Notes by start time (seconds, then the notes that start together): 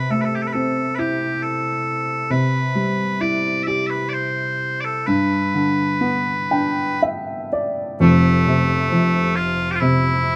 Already playing: C3 B4
0.10 A3 A4
0.21 A4 B4
0.35 G4
0.42 A4
0.47 B4
0.53 C4 A4
0.95 E4 G4 B4
1.42 A4
2.30 C3 B4
2.75 G3
3.21 E4 D5
3.63 D5 E5
3.68 G4
3.87 B4 E5
4.09 D5
4.13 C5
4.80 D5
4.85 A4
5.06 G2 B4
5.54 D3
6.01 B3
6.51 D4 G5
7.02 E5
7.53 D5
8.00 F1 F2 A3
8.47 C3
8.92 F2
9.36 F4
9.71 G4
9.75 F4
9.80 C3 E4